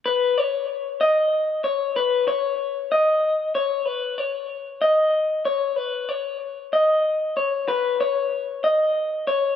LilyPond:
\new Staff \with { instrumentName = "Clean electric guitar" } { \time 6/8 \key b \mixolydian \tempo 4. = 63 b'8 cis''4 dis''4 cis''8 | b'8 cis''4 dis''4 cis''8 | b'8 cis''4 dis''4 cis''8 | b'8 cis''4 dis''4 cis''8 |
b'8 cis''4 dis''4 cis''8 | }